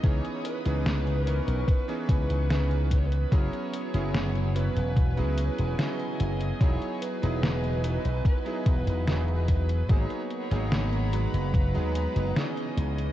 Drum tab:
HH |xxxxxxxxxxxxxxxx|xxxxxxxxxxxxxxxx|xxxxxxxxxxxxxxxx|xxxxxxxxxxxxxxxx|
SD |----o-------o---|----o-------o---|----o-------o---|----o-------o---|
BD |o-------o-o---o-|o-------o-------|o-------o-o---o-|o-------o-------|